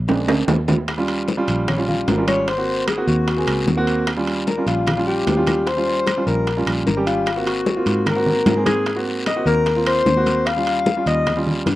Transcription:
Already playing: A#1
0.08 G#3 C4 D4, high bongo, high conga, high timbale, long guiro
0.28 D2, high bongo, high timbale, claves
0.48 D#2, low bongo, low conga, low timbale, short guiro
0.68 low bongo, low conga, low timbale, short guiro
0.88 high bongo, high conga, high timbale, long guiro, claves
0.98 G3 C#4 F4
1.08 high bongo, high conga, high timbale
1.28 high bongo, high conga, short guiro
1.37 G3 C#4 F4
1.48 A#1, high bongo, high conga, high timbale, short guiro
1.68 C#4, high bongo, high conga, low conga, high timbale, long guiro, claves
1.77 G3 C#4 F4
1.88 F4, high bongo, high conga, low conga
2.07 G#1 A#4, high bongo, low bongo, high conga, high timbale, low timbale, short guiro
2.18 G3 C#4 F4
2.28 C#5, high conga, high timbale, short guiro, claves
2.48 C5, high bongo, high timbale, long guiro
2.58 A#3 C4 F#4
2.68 high bongo, high conga
2.88 G#4, high bongo, high conga, high timbale, short guiro, claves
2.97 A#3 C4 F#4
3.07 D#2 F#4, high bongo, short guiro
3.28 high bongo, high conga, high timbale, long guiro
3.37 A#3 C4 G#4
3.47 C#2, high bongo, high conga, high timbale, claves
3.67 D#2, high bongo, low bongo, high conga, short guiro
3.77 A#3 C4 F#4
3.87 high timbale, short guiro
4.07 high bongo, high conga, high timbale, long guiro, claves
4.17 G3 C#4 F4
4.27 high bongo, high conga, high timbale
4.47 A#4, high bongo, high conga, short guiro
4.58 G3 C#4 F4
4.66 A#1 F4, high bongo, high conga, high timbale, short guiro
4.87 high bongo, high conga, low conga, high timbale, long guiro, claves
4.97 G3 C#4 F4
5.07 G4, high bongo, high conga
5.27 D#2, high bongo, low bongo, high conga, high timbale, low timbale, short guiro
5.37 G3 C#4 F4
5.47 high conga, high timbale, short guiro, claves
5.67 C5, high bongo, high conga, high timbale, long guiro
5.77 G3 C#4 F4
5.87 high bongo, high conga
6.07 high bongo, high conga, high timbale, short guiro, claves
6.17 G3 C#4 F4
6.27 A#1 A#4, high bongo, short guiro
6.47 high bongo, high conga, high timbale, long guiro
6.57 G3 C#4 F4
6.66 A#1, high bongo, high conga, high timbale, claves
6.86 G#1 A#4, high bongo, low bongo, high conga, short guiro
6.97 G3 C#4 G4
7.07 F4, high timbale, short guiro
7.26 high bongo, high conga, high timbale, long guiro, claves
7.36 A#3 C4 F#4
7.46 F#4, high bongo, high conga, high timbale
7.66 high bongo, high conga, short guiro
7.76 A#3 C4 F4
7.86 G#2, high bongo, high conga, high timbale, short guiro
8.06 A#4, high bongo, high conga, low conga, high timbale, long guiro, claves
8.16 A#3 C4 F#4
8.26 high bongo, high conga, low conga
8.46 G#2, high bongo, low bongo, high conga, high timbale, low timbale, short guiro
8.56 A#3 C4 G#4
8.66 G#4, high conga, high timbale, short guiro, claves
8.86 high bongo, high conga, high timbale, long guiro
8.96 A#3 C4 F#4
9.07 high bongo, high conga
9.26 D#5, high bongo, high conga, high timbale, short guiro, claves
9.36 A#3 C4 F#4
9.46 D#2 A#4, high bongo, short guiro
9.66 high bongo, high conga, high timbale, long guiro
9.76 A#3 C4 F4
9.86 C5, high bongo, high conga, high timbale, claves
10.06 D#2, high bongo, low bongo, high conga, short guiro
10.16 A#3 C4 F#4
10.26 high conga, high timbale, short guiro
10.46 F5, high bongo, high conga, high timbale, long guiro, claves
10.57 G3 C#4 F4
10.67 high bongo, high conga, high timbale
10.86 high bongo, high conga, short guiro
10.97 G3 C#4 F4
11.06 D#2 D#5, high bongo, high conga, high timbale, short guiro
11.26 high bongo, high conga, low conga, high timbale, long guiro, claves
11.37 G3 C#4 F4
11.47 high bongo, high conga, low conga
11.66 G2, high bongo, low bongo, high conga, high timbale, short guiro

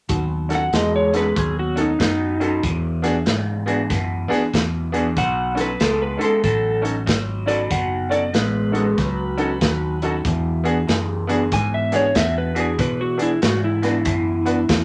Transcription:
0.09 D#2 B2 F#3, kick, closed hi-hat
0.49 C#4 D#4 F#4 A4, snare, closed hi-hat
0.55 F#5
0.73 E2 B2 G#3 D#5, snare, closed hi-hat
0.96 C#5
1.13 B2 G#3 C#4 D#4 F#4 A4 B4, snare, closed hi-hat
1.35 D#2 B2 F#3 G#4, kick, closed hi-hat
1.59 F#4
1.76 C#4 D#4 F#4 A4, closed hi-hat
1.81 D#4
1.99 F#2 B2 F#3 D#4, kick, snare, closed hi-hat
2.40 B2 F#3 C#4 D#4 F#4 A4, closed hi-hat
2.63 E2 B2, kick, closed hi-hat
3.02 B3 D4 F#4 G#4, snare, closed hi-hat
3.26 E2 G#2 C#3, snare, closed hi-hat
3.66 E2 C#3 B3 D4 F#4 G#4, closed hi-hat
3.90 E2 F#2 B2, kick, snare, closed hi-hat
4.28 B3 D4 F#4 G#4, muted fingered electric bass stroke, closed hi-hat
4.33 snare
4.53 E2 B2, kick, snare, closed hi-hat
4.92 E2 B2 B3 D4 F#4 G#4, closed hi-hat
5.17 B1 B2 F#3 F#5, kick, closed hi-hat
5.55 C#4 D#4 F#4 A4, snare, closed hi-hat
5.61 B4
5.80 C#2 B2 G#3 A4, snare, closed hi-hat
6.02 B4
6.17 B2 G#3 C#4 D#4 F#4 A4, closed hi-hat
6.25 A4
6.44 A1 B2 F#3 A4, kick, closed hi-hat
6.82 C#4 D#4 F#4 A4, closed hi-hat
7.06 G#1 B2 F#3, kick, snare, closed hi-hat
7.46 B2 F#3 C#4 D#4 F#4 A4 D5, closed hi-hat
7.70 F#1 B2 F#3 F#5, kick, closed hi-hat
8.10 C#4 D#4 F#4 A4 D5, closed hi-hat
8.33 A1 B2 G#3 B4, snare, closed hi-hat
8.72 B2 G#3 C#4 D#4 F#4 A4, closed hi-hat
8.97 C#2 B2 F#3, kick, snare, closed hi-hat
9.38 C#4 D#4 F#4 A4, closed hi-hat
9.61 D#2 B2 F#3, kick, snare, closed hi-hat
10.02 B2 F#3 C#4 D#4 F#4 A4, closed hi-hat
10.25 E2 B2, kick, closed hi-hat
10.64 B3 D4 F#4 G#4, closed hi-hat
10.87 E2 F#2 C#3, snare, closed hi-hat
11.27 E2 C#3 B3 D4 F#4 G#4, closed hi-hat
11.52 E2 G#2 B2 G#5, kick, snare, closed hi-hat
11.74 E5
11.92 B3 D4 F#4 G#4, snare, closed hi-hat
11.96 C#5
12.15 E2 B2 E5, kick, snare, closed hi-hat
12.38 B4
12.54 E2 B2 B3 D4 F#4 G#4, closed hi-hat
12.60 G#4
12.78 E2 B2 B4, kick, closed hi-hat
13.01 F#4
13.17 B3 D4 F#4 G#4, closed hi-hat
13.22 E4
13.42 E2 G#2 C#3 F#4, snare, closed hi-hat
13.64 E4
13.82 E2 C#3 B3 D4 F#4 B4, snare, closed hi-hat
14.05 E2 F#2 B2, kick, closed hi-hat
14.45 B3 D4 F#4 B4, closed hi-hat
14.69 E2 B2, kick, snare, closed hi-hat

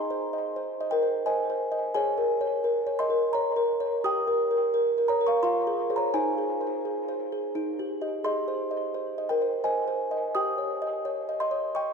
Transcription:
Already playing: G#4 D#5 C6
0.10 C5
0.33 D#5
0.56 C5
0.81 D#5
0.91 A#4 G5
1.03 C5
1.26 C5 D#5 G#5
1.50 C5
1.72 D#5
1.94 G#4 C#5 G#5
2.18 A#4
2.41 C#5
2.64 A#4
2.87 C#5
2.99 D#5 C6
3.10 A#4
3.33 C#5 A#5
3.56 A#4
3.80 C#5
4.04 G4 G5 D#6
4.27 A#4
4.51 A#4
4.74 A#4
4.98 A#4
5.08 C#5 A#5
5.21 A#4
5.27 F5 C#6
5.43 F4 F5 C6
5.67 G#4
5.90 G#4 C5
5.96 C#5 A#5
6.14 D#4 C5 G#5
6.38 G#4
6.61 C5
6.85 G#4
7.09 C5
7.32 G#4
7.55 D#4
7.79 G4
8.01 G4 D#5
8.24 G#4 D#5 C6
8.48 C5
8.71 D#5
8.94 C5
9.18 D#5
9.29 A#4 G5
9.42 C5
9.64 C5 D#5 G#5
9.88 C5
10.11 D#5
10.35 G4 G5 D#6
10.58 C#5
10.82 D#5
11.05 C#5
11.29 D#5
11.40 D#5 C6
11.51 C#5
11.75 D#5 G5 C#6

